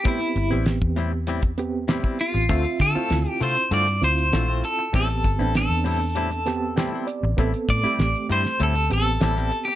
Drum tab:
HH |xxxxx-x-xxx-x-x-|xxxxxxoxxxxxx-x-|xxxxx-o-xxx-x-x-|xxxxxxoxxxxxx-x-|
SD |----o-------o---|----o-----o-o---|----o-----o-o---|----o--o----oo--|
BD |o----o---o---o--|o-o-------------|o-o-------------|o-o-------------|